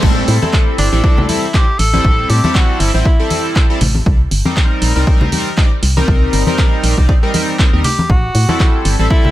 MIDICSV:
0, 0, Header, 1, 5, 480
1, 0, Start_track
1, 0, Tempo, 504202
1, 27, Time_signature, 4, 2, 24, 8
1, 8864, End_track
2, 0, Start_track
2, 0, Title_t, "Tenor saxophone"
2, 0, Program_c, 0, 66
2, 749, Note_on_c, 0, 62, 97
2, 1226, Note_on_c, 0, 64, 97
2, 1241, Note_off_c, 0, 62, 0
2, 1468, Note_on_c, 0, 67, 105
2, 1483, Note_off_c, 0, 64, 0
2, 1706, Note_on_c, 0, 69, 122
2, 1721, Note_off_c, 0, 67, 0
2, 2188, Note_on_c, 0, 67, 106
2, 2202, Note_off_c, 0, 69, 0
2, 2428, Note_on_c, 0, 66, 99
2, 2442, Note_off_c, 0, 67, 0
2, 2667, Note_on_c, 0, 64, 90
2, 2682, Note_off_c, 0, 66, 0
2, 2795, Note_off_c, 0, 64, 0
2, 2801, Note_on_c, 0, 64, 89
2, 3247, Note_off_c, 0, 64, 0
2, 7467, Note_on_c, 0, 67, 110
2, 7708, Note_on_c, 0, 66, 116
2, 7722, Note_off_c, 0, 67, 0
2, 8427, Note_off_c, 0, 66, 0
2, 8665, Note_on_c, 0, 64, 121
2, 8864, Note_off_c, 0, 64, 0
2, 8864, End_track
3, 0, Start_track
3, 0, Title_t, "Analog polysynth"
3, 0, Program_c, 1, 90
3, 26, Note_on_c, 1, 55, 97
3, 26, Note_on_c, 1, 60, 91
3, 27, Note_on_c, 1, 64, 89
3, 27, Note_on_c, 1, 69, 109
3, 347, Note_off_c, 1, 55, 0
3, 347, Note_off_c, 1, 60, 0
3, 347, Note_off_c, 1, 64, 0
3, 348, Note_off_c, 1, 69, 0
3, 401, Note_on_c, 1, 55, 85
3, 401, Note_on_c, 1, 60, 78
3, 401, Note_on_c, 1, 64, 80
3, 402, Note_on_c, 1, 69, 95
3, 849, Note_off_c, 1, 55, 0
3, 849, Note_off_c, 1, 60, 0
3, 849, Note_off_c, 1, 64, 0
3, 849, Note_off_c, 1, 69, 0
3, 881, Note_on_c, 1, 55, 86
3, 881, Note_on_c, 1, 60, 78
3, 881, Note_on_c, 1, 64, 81
3, 882, Note_on_c, 1, 69, 93
3, 964, Note_off_c, 1, 55, 0
3, 964, Note_off_c, 1, 60, 0
3, 964, Note_off_c, 1, 64, 0
3, 964, Note_off_c, 1, 69, 0
3, 986, Note_on_c, 1, 55, 91
3, 986, Note_on_c, 1, 60, 84
3, 986, Note_on_c, 1, 64, 84
3, 987, Note_on_c, 1, 69, 101
3, 1201, Note_off_c, 1, 55, 0
3, 1201, Note_off_c, 1, 60, 0
3, 1201, Note_off_c, 1, 64, 0
3, 1201, Note_off_c, 1, 69, 0
3, 1226, Note_on_c, 1, 55, 83
3, 1227, Note_on_c, 1, 60, 76
3, 1228, Note_on_c, 1, 64, 77
3, 1228, Note_on_c, 1, 69, 91
3, 1388, Note_off_c, 1, 55, 0
3, 1388, Note_off_c, 1, 60, 0
3, 1388, Note_off_c, 1, 64, 0
3, 1388, Note_off_c, 1, 69, 0
3, 1467, Note_on_c, 1, 55, 72
3, 1468, Note_on_c, 1, 60, 65
3, 1468, Note_on_c, 1, 64, 70
3, 1468, Note_on_c, 1, 72, 81
3, 1572, Note_off_c, 1, 55, 0
3, 1572, Note_off_c, 1, 60, 0
3, 1573, Note_off_c, 1, 64, 0
3, 1573, Note_off_c, 1, 72, 0
3, 1841, Note_on_c, 1, 55, 86
3, 1841, Note_on_c, 1, 60, 78
3, 1841, Note_on_c, 1, 64, 78
3, 1841, Note_on_c, 1, 69, 94
3, 2289, Note_off_c, 1, 55, 0
3, 2289, Note_off_c, 1, 60, 0
3, 2289, Note_off_c, 1, 64, 0
3, 2289, Note_off_c, 1, 69, 0
3, 2320, Note_on_c, 1, 55, 94
3, 2321, Note_on_c, 1, 60, 88
3, 2321, Note_on_c, 1, 64, 87
3, 2321, Note_on_c, 1, 69, 105
3, 2768, Note_off_c, 1, 55, 0
3, 2769, Note_off_c, 1, 60, 0
3, 2769, Note_off_c, 1, 64, 0
3, 2769, Note_off_c, 1, 69, 0
3, 2801, Note_on_c, 1, 55, 77
3, 2801, Note_on_c, 1, 60, 70
3, 2802, Note_on_c, 1, 64, 71
3, 2803, Note_on_c, 1, 72, 86
3, 2941, Note_off_c, 1, 55, 0
3, 2941, Note_off_c, 1, 60, 0
3, 2941, Note_off_c, 1, 64, 0
3, 2942, Note_off_c, 1, 72, 0
3, 3041, Note_on_c, 1, 55, 78
3, 3041, Note_on_c, 1, 60, 75
3, 3041, Note_on_c, 1, 64, 74
3, 3042, Note_on_c, 1, 69, 90
3, 3489, Note_off_c, 1, 55, 0
3, 3489, Note_off_c, 1, 60, 0
3, 3489, Note_off_c, 1, 64, 0
3, 3489, Note_off_c, 1, 69, 0
3, 3521, Note_on_c, 1, 55, 86
3, 3522, Note_on_c, 1, 60, 81
3, 3522, Note_on_c, 1, 64, 79
3, 3522, Note_on_c, 1, 69, 97
3, 3604, Note_off_c, 1, 55, 0
3, 3604, Note_off_c, 1, 60, 0
3, 3604, Note_off_c, 1, 64, 0
3, 3604, Note_off_c, 1, 69, 0
3, 4241, Note_on_c, 1, 55, 86
3, 4242, Note_on_c, 1, 60, 79
3, 4242, Note_on_c, 1, 63, 79
3, 4242, Note_on_c, 1, 70, 94
3, 4689, Note_off_c, 1, 55, 0
3, 4689, Note_off_c, 1, 60, 0
3, 4689, Note_off_c, 1, 63, 0
3, 4689, Note_off_c, 1, 70, 0
3, 4720, Note_on_c, 1, 55, 85
3, 4720, Note_on_c, 1, 60, 78
3, 4721, Note_on_c, 1, 63, 79
3, 4722, Note_on_c, 1, 70, 96
3, 4803, Note_off_c, 1, 55, 0
3, 4803, Note_off_c, 1, 60, 0
3, 4804, Note_off_c, 1, 63, 0
3, 4804, Note_off_c, 1, 70, 0
3, 4826, Note_on_c, 1, 55, 90
3, 4827, Note_on_c, 1, 63, 83
3, 4827, Note_on_c, 1, 70, 98
3, 5041, Note_off_c, 1, 55, 0
3, 5042, Note_off_c, 1, 63, 0
3, 5042, Note_off_c, 1, 70, 0
3, 5066, Note_on_c, 1, 55, 85
3, 5067, Note_on_c, 1, 60, 75
3, 5067, Note_on_c, 1, 63, 75
3, 5068, Note_on_c, 1, 70, 91
3, 5228, Note_off_c, 1, 55, 0
3, 5228, Note_off_c, 1, 60, 0
3, 5228, Note_off_c, 1, 63, 0
3, 5228, Note_off_c, 1, 70, 0
3, 5307, Note_on_c, 1, 55, 76
3, 5308, Note_on_c, 1, 60, 66
3, 5308, Note_on_c, 1, 63, 68
3, 5308, Note_on_c, 1, 74, 83
3, 5412, Note_off_c, 1, 55, 0
3, 5412, Note_off_c, 1, 60, 0
3, 5412, Note_off_c, 1, 63, 0
3, 5413, Note_off_c, 1, 74, 0
3, 5682, Note_on_c, 1, 55, 87
3, 5682, Note_on_c, 1, 60, 79
3, 5682, Note_on_c, 1, 63, 79
3, 5683, Note_on_c, 1, 70, 99
3, 6129, Note_off_c, 1, 55, 0
3, 6129, Note_off_c, 1, 60, 0
3, 6129, Note_off_c, 1, 63, 0
3, 6130, Note_off_c, 1, 70, 0
3, 6161, Note_on_c, 1, 55, 95
3, 6162, Note_on_c, 1, 60, 89
3, 6162, Note_on_c, 1, 63, 88
3, 6162, Note_on_c, 1, 70, 106
3, 6609, Note_off_c, 1, 55, 0
3, 6609, Note_off_c, 1, 60, 0
3, 6609, Note_off_c, 1, 63, 0
3, 6609, Note_off_c, 1, 70, 0
3, 6640, Note_on_c, 1, 55, 77
3, 6641, Note_on_c, 1, 60, 73
3, 6641, Note_on_c, 1, 63, 73
3, 6642, Note_on_c, 1, 74, 86
3, 6780, Note_off_c, 1, 55, 0
3, 6781, Note_off_c, 1, 60, 0
3, 6781, Note_off_c, 1, 63, 0
3, 6781, Note_off_c, 1, 74, 0
3, 6881, Note_on_c, 1, 55, 80
3, 6881, Note_on_c, 1, 60, 74
3, 6881, Note_on_c, 1, 63, 74
3, 6882, Note_on_c, 1, 70, 89
3, 6965, Note_off_c, 1, 55, 0
3, 6966, Note_off_c, 1, 60, 0
3, 6966, Note_off_c, 1, 63, 0
3, 6966, Note_off_c, 1, 70, 0
3, 6986, Note_on_c, 1, 55, 84
3, 6987, Note_on_c, 1, 60, 78
3, 6987, Note_on_c, 1, 63, 77
3, 6987, Note_on_c, 1, 70, 96
3, 7201, Note_off_c, 1, 55, 0
3, 7201, Note_off_c, 1, 60, 0
3, 7201, Note_off_c, 1, 63, 0
3, 7202, Note_off_c, 1, 70, 0
3, 7227, Note_on_c, 1, 55, 83
3, 7228, Note_on_c, 1, 60, 77
3, 7228, Note_on_c, 1, 63, 77
3, 7228, Note_on_c, 1, 70, 92
3, 7329, Note_off_c, 1, 55, 0
3, 7329, Note_off_c, 1, 60, 0
3, 7329, Note_off_c, 1, 63, 0
3, 7330, Note_off_c, 1, 70, 0
3, 7360, Note_on_c, 1, 55, 89
3, 7361, Note_on_c, 1, 60, 79
3, 7361, Note_on_c, 1, 63, 79
3, 7362, Note_on_c, 1, 70, 92
3, 7443, Note_off_c, 1, 55, 0
3, 7444, Note_off_c, 1, 60, 0
3, 7444, Note_off_c, 1, 63, 0
3, 7444, Note_off_c, 1, 70, 0
3, 8080, Note_on_c, 1, 55, 85
3, 8081, Note_on_c, 1, 60, 78
3, 8081, Note_on_c, 1, 64, 80
3, 8082, Note_on_c, 1, 69, 94
3, 8528, Note_off_c, 1, 55, 0
3, 8529, Note_off_c, 1, 60, 0
3, 8529, Note_off_c, 1, 64, 0
3, 8529, Note_off_c, 1, 69, 0
3, 8561, Note_on_c, 1, 55, 87
3, 8561, Note_on_c, 1, 60, 79
3, 8562, Note_on_c, 1, 64, 78
3, 8562, Note_on_c, 1, 69, 93
3, 8644, Note_off_c, 1, 55, 0
3, 8644, Note_off_c, 1, 60, 0
3, 8644, Note_off_c, 1, 64, 0
3, 8644, Note_off_c, 1, 69, 0
3, 8667, Note_on_c, 1, 60, 86
3, 8667, Note_on_c, 1, 64, 83
3, 8667, Note_on_c, 1, 69, 100
3, 8864, Note_off_c, 1, 60, 0
3, 8864, Note_off_c, 1, 64, 0
3, 8864, Note_off_c, 1, 69, 0
3, 8864, End_track
4, 0, Start_track
4, 0, Title_t, "FM bass"
4, 0, Program_c, 2, 39
4, 26, Note_on_c, 2, 33, 100
4, 225, Note_off_c, 2, 33, 0
4, 266, Note_on_c, 2, 45, 99
4, 374, Note_off_c, 2, 45, 0
4, 746, Note_on_c, 2, 31, 89
4, 854, Note_off_c, 2, 31, 0
4, 881, Note_on_c, 2, 33, 93
4, 966, Note_off_c, 2, 33, 0
4, 1706, Note_on_c, 2, 33, 88
4, 1904, Note_off_c, 2, 33, 0
4, 1947, Note_on_c, 2, 33, 101
4, 2145, Note_off_c, 2, 33, 0
4, 2187, Note_on_c, 2, 45, 98
4, 2295, Note_off_c, 2, 45, 0
4, 2666, Note_on_c, 2, 31, 89
4, 2774, Note_off_c, 2, 31, 0
4, 2800, Note_on_c, 2, 33, 90
4, 2885, Note_off_c, 2, 33, 0
4, 3627, Note_on_c, 2, 33, 90
4, 3825, Note_off_c, 2, 33, 0
4, 3867, Note_on_c, 2, 36, 102
4, 4065, Note_off_c, 2, 36, 0
4, 4106, Note_on_c, 2, 31, 102
4, 4214, Note_off_c, 2, 31, 0
4, 4587, Note_on_c, 2, 34, 90
4, 4695, Note_off_c, 2, 34, 0
4, 4721, Note_on_c, 2, 36, 92
4, 4806, Note_off_c, 2, 36, 0
4, 5547, Note_on_c, 2, 36, 87
4, 5745, Note_off_c, 2, 36, 0
4, 5787, Note_on_c, 2, 36, 101
4, 5985, Note_off_c, 2, 36, 0
4, 6027, Note_on_c, 2, 31, 103
4, 6135, Note_off_c, 2, 31, 0
4, 6507, Note_on_c, 2, 34, 89
4, 6615, Note_off_c, 2, 34, 0
4, 6642, Note_on_c, 2, 36, 92
4, 6726, Note_off_c, 2, 36, 0
4, 7362, Note_on_c, 2, 39, 90
4, 7446, Note_off_c, 2, 39, 0
4, 7707, Note_on_c, 2, 33, 102
4, 7905, Note_off_c, 2, 33, 0
4, 7946, Note_on_c, 2, 45, 102
4, 8054, Note_off_c, 2, 45, 0
4, 8427, Note_on_c, 2, 31, 94
4, 8535, Note_off_c, 2, 31, 0
4, 8560, Note_on_c, 2, 33, 95
4, 8646, Note_off_c, 2, 33, 0
4, 8864, End_track
5, 0, Start_track
5, 0, Title_t, "Drums"
5, 25, Note_on_c, 9, 49, 104
5, 27, Note_on_c, 9, 36, 123
5, 120, Note_off_c, 9, 49, 0
5, 122, Note_off_c, 9, 36, 0
5, 265, Note_on_c, 9, 46, 105
5, 360, Note_off_c, 9, 46, 0
5, 404, Note_on_c, 9, 63, 83
5, 499, Note_off_c, 9, 63, 0
5, 507, Note_on_c, 9, 36, 116
5, 507, Note_on_c, 9, 39, 127
5, 602, Note_off_c, 9, 36, 0
5, 603, Note_off_c, 9, 39, 0
5, 746, Note_on_c, 9, 46, 105
5, 841, Note_off_c, 9, 46, 0
5, 987, Note_on_c, 9, 36, 119
5, 1082, Note_off_c, 9, 36, 0
5, 1122, Note_on_c, 9, 64, 92
5, 1217, Note_off_c, 9, 64, 0
5, 1227, Note_on_c, 9, 46, 105
5, 1228, Note_on_c, 9, 63, 64
5, 1322, Note_off_c, 9, 46, 0
5, 1323, Note_off_c, 9, 63, 0
5, 1467, Note_on_c, 9, 36, 120
5, 1469, Note_on_c, 9, 39, 123
5, 1562, Note_off_c, 9, 36, 0
5, 1564, Note_off_c, 9, 39, 0
5, 1707, Note_on_c, 9, 46, 112
5, 1802, Note_off_c, 9, 46, 0
5, 1841, Note_on_c, 9, 63, 80
5, 1937, Note_off_c, 9, 63, 0
5, 1947, Note_on_c, 9, 36, 125
5, 2042, Note_off_c, 9, 36, 0
5, 2186, Note_on_c, 9, 46, 110
5, 2281, Note_off_c, 9, 46, 0
5, 2322, Note_on_c, 9, 63, 108
5, 2418, Note_off_c, 9, 63, 0
5, 2427, Note_on_c, 9, 36, 123
5, 2429, Note_on_c, 9, 39, 127
5, 2522, Note_off_c, 9, 36, 0
5, 2524, Note_off_c, 9, 39, 0
5, 2667, Note_on_c, 9, 46, 109
5, 2762, Note_off_c, 9, 46, 0
5, 2907, Note_on_c, 9, 36, 121
5, 3003, Note_off_c, 9, 36, 0
5, 3146, Note_on_c, 9, 46, 107
5, 3147, Note_on_c, 9, 63, 67
5, 3241, Note_off_c, 9, 46, 0
5, 3242, Note_off_c, 9, 63, 0
5, 3387, Note_on_c, 9, 36, 120
5, 3388, Note_on_c, 9, 39, 127
5, 3482, Note_off_c, 9, 36, 0
5, 3484, Note_off_c, 9, 39, 0
5, 3627, Note_on_c, 9, 46, 113
5, 3628, Note_on_c, 9, 64, 80
5, 3722, Note_off_c, 9, 46, 0
5, 3724, Note_off_c, 9, 64, 0
5, 3756, Note_on_c, 9, 63, 80
5, 3851, Note_off_c, 9, 63, 0
5, 3867, Note_on_c, 9, 36, 127
5, 3963, Note_off_c, 9, 36, 0
5, 4106, Note_on_c, 9, 46, 113
5, 4202, Note_off_c, 9, 46, 0
5, 4239, Note_on_c, 9, 63, 105
5, 4335, Note_off_c, 9, 63, 0
5, 4347, Note_on_c, 9, 36, 122
5, 4348, Note_on_c, 9, 39, 123
5, 4443, Note_off_c, 9, 36, 0
5, 4443, Note_off_c, 9, 39, 0
5, 4587, Note_on_c, 9, 46, 113
5, 4682, Note_off_c, 9, 46, 0
5, 4827, Note_on_c, 9, 36, 127
5, 4923, Note_off_c, 9, 36, 0
5, 4959, Note_on_c, 9, 64, 100
5, 5055, Note_off_c, 9, 64, 0
5, 5067, Note_on_c, 9, 46, 107
5, 5068, Note_on_c, 9, 63, 65
5, 5162, Note_off_c, 9, 46, 0
5, 5164, Note_off_c, 9, 63, 0
5, 5307, Note_on_c, 9, 36, 120
5, 5308, Note_on_c, 9, 39, 118
5, 5403, Note_off_c, 9, 36, 0
5, 5403, Note_off_c, 9, 39, 0
5, 5547, Note_on_c, 9, 46, 118
5, 5642, Note_off_c, 9, 46, 0
5, 5685, Note_on_c, 9, 63, 81
5, 5780, Note_off_c, 9, 63, 0
5, 5787, Note_on_c, 9, 36, 124
5, 5883, Note_off_c, 9, 36, 0
5, 6026, Note_on_c, 9, 46, 108
5, 6121, Note_off_c, 9, 46, 0
5, 6156, Note_on_c, 9, 63, 97
5, 6251, Note_off_c, 9, 63, 0
5, 6267, Note_on_c, 9, 36, 121
5, 6269, Note_on_c, 9, 39, 123
5, 6363, Note_off_c, 9, 36, 0
5, 6364, Note_off_c, 9, 39, 0
5, 6507, Note_on_c, 9, 46, 109
5, 6603, Note_off_c, 9, 46, 0
5, 6642, Note_on_c, 9, 36, 65
5, 6737, Note_off_c, 9, 36, 0
5, 6747, Note_on_c, 9, 36, 119
5, 6843, Note_off_c, 9, 36, 0
5, 6988, Note_on_c, 9, 46, 109
5, 6988, Note_on_c, 9, 63, 73
5, 7083, Note_off_c, 9, 46, 0
5, 7083, Note_off_c, 9, 63, 0
5, 7227, Note_on_c, 9, 36, 124
5, 7229, Note_on_c, 9, 39, 115
5, 7323, Note_off_c, 9, 36, 0
5, 7324, Note_off_c, 9, 39, 0
5, 7462, Note_on_c, 9, 64, 76
5, 7467, Note_on_c, 9, 46, 115
5, 7557, Note_off_c, 9, 64, 0
5, 7562, Note_off_c, 9, 46, 0
5, 7603, Note_on_c, 9, 63, 89
5, 7698, Note_off_c, 9, 63, 0
5, 7707, Note_on_c, 9, 36, 122
5, 7802, Note_off_c, 9, 36, 0
5, 7946, Note_on_c, 9, 46, 107
5, 8042, Note_off_c, 9, 46, 0
5, 8078, Note_on_c, 9, 63, 102
5, 8173, Note_off_c, 9, 63, 0
5, 8187, Note_on_c, 9, 36, 118
5, 8189, Note_on_c, 9, 39, 117
5, 8282, Note_off_c, 9, 36, 0
5, 8284, Note_off_c, 9, 39, 0
5, 8426, Note_on_c, 9, 46, 108
5, 8521, Note_off_c, 9, 46, 0
5, 8667, Note_on_c, 9, 36, 118
5, 8762, Note_off_c, 9, 36, 0
5, 8801, Note_on_c, 9, 64, 84
5, 8864, Note_off_c, 9, 64, 0
5, 8864, End_track
0, 0, End_of_file